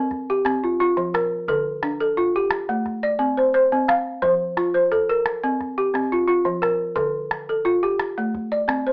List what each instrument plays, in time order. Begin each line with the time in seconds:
Already playing: balafon C4 A#4
0.11 calabash thump, calabash click
0.30 balafon G4
0.45 balafon C4, calabash click
0.64 balafon F4, calabash click
0.80 balafon F4, calabash click
0.97 balafon F3
1.14 balafon A#4, calabash click
1.48 balafon D3 A4, calabash thump
1.83 balafon D4, calabash click
2.00 balafon A4
2.17 balafon F4, calabash click
2.36 balafon G4
2.51 calabash click
2.69 balafon A3
2.86 calabash thump, calabash click
3.03 balafon D5
3.19 balafon C4
3.38 balafon C5, calabash click
3.54 balafon C5, calabash click
3.72 balafon C4
3.88 balafon F5, calabash click
4.22 balafon F3 C5, calabash thump
4.57 balafon F4, calabash click
4.74 balafon C5
4.92 balafon A4, calabash click
5.09 balafon A#4
5.26 calabash click
5.44 balafon C4
5.60 calabash thump, calabash click
5.78 balafon G4
5.94 balafon C4, calabash click
6.12 balafon F4, calabash click
6.28 balafon F4, calabash click
6.45 balafon F3
6.62 balafon A#4, calabash click
6.96 balafon D3 A4, calabash thump, calabash click
7.31 calabash click
7.49 balafon A4
7.65 balafon F4, calabash click
7.83 balafon G4, calabash click
8.00 calabash click
8.18 balafon A3
8.35 calabash thump
8.52 balafon D5
8.68 balafon C4, calabash click
8.87 balafon C5, calabash click